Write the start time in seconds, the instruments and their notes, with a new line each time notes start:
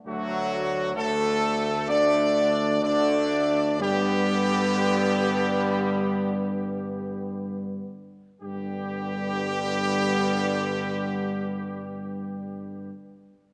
0.06 tuba D2, trombone section D3 A3, french horn section F#3, trumpet section F#4
0.94 trombone section D3 A3, french horn section A3, trumpet section A4
1.87 trombone section D3 A3, french horn section D4, trumpet section D5
2.81 trombone section D3 A3, french horn section D4, trumpet section D5
3.79 tuba G2, trombone section D3 B3, french horn section G3, trumpet section G4
8.41 tuba G2, trombone section D3 B3, french horn section G3, trumpet section G4